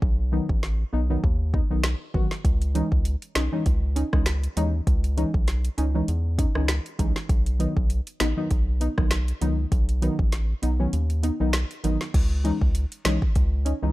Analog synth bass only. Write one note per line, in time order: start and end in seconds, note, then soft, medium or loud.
0.02 0.40 B1 loud
0.49 0.84 A1 medium
0.93 1.17 B1 medium
1.24 1.61 D#2 loud
1.71 1.95 B1 medium
2.14 2.28 A1 medium
2.45 2.82 C#2 loud
2.92 3.16 C#2 medium
3.36 3.49 B1 medium
3.66 4.04 C#2 loud
4.13 4.48 C#2 medium
4.57 4.81 D#2 medium
4.87 5.25 C#2 loud
5.34 5.69 B1 medium
5.78 6.02 C#2 medium
6.08 6.46 E2 loud
6.55 6.80 C#2 medium
6.99 7.13 B1 medium
7.29 7.67 B1 loud
7.77 8.01 B1 loud
8.20 8.34 A1 medium
8.51 8.89 B1 medium
8.98 9.33 B1 medium
9.42 9.66 C#2 medium
9.72 10.10 B1 loud
10.19 10.54 A1 medium
10.63 10.87 B1 medium
10.93 11.31 D#2 loud
11.40 11.65 B1 medium
11.84 11.98 A1 medium
12.14 12.52 C#2 loud
12.61 12.86 C#2 medium
13.05 13.19 B1 medium
13.36 13.73 C#2 loud
13.83 13.92 C#2 medium